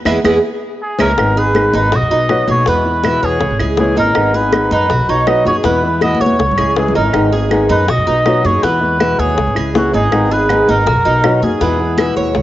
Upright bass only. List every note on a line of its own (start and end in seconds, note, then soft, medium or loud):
0.05 0.20 E2 medium
0.24 0.38 E2 medium
1.00 1.13 C#2 loud
1.18 1.71 G#1 medium
1.74 1.91 G#1 medium
1.92 2.01 B1 loud
2.02 2.10 F#2 medium
2.11 2.46 B1 medium
2.48 2.66 B1 loud
2.67 3.20 E2 loud
3.23 3.40 E2 medium
3.41 3.50 C#2 loud
3.50 3.59 G#1 medium
3.60 3.95 C#2 medium
3.97 4.14 G#1 medium
4.15 4.68 G#1 medium
4.71 4.89 F#2 medium
4.90 4.99 B1 loud
4.99 5.08 F#2 medium
5.08 5.44 B1 medium
5.46 5.64 F#2 medium
5.64 6.18 E2 loud
6.20 6.38 D#2 medium
6.39 6.48 C#2 loud
6.49 6.57 G#1 medium
6.58 6.93 C#2 medium
6.95 7.13 G#1 medium
7.14 7.67 G#1 loud
7.70 7.87 F#2 loud
7.88 7.97 B1 loud
7.98 8.06 F#2 medium
8.07 8.42 B1 medium
8.44 8.62 F#2 medium
8.63 9.16 E2 loud
9.19 9.36 D#2 medium
9.38 9.46 C#2 loud
9.47 9.56 G#1 medium
9.56 9.92 C#2 medium
9.93 10.11 G#1 medium
10.12 10.65 G#1 loud
10.68 10.85 G#1 medium
10.86 10.95 B1 loud
10.96 11.04 F#2 medium
11.05 11.40 B1 medium
11.42 11.60 F#2 medium
11.61 12.14 E2 medium
12.17 12.34 D#2 medium
12.35 12.42 C#2 loud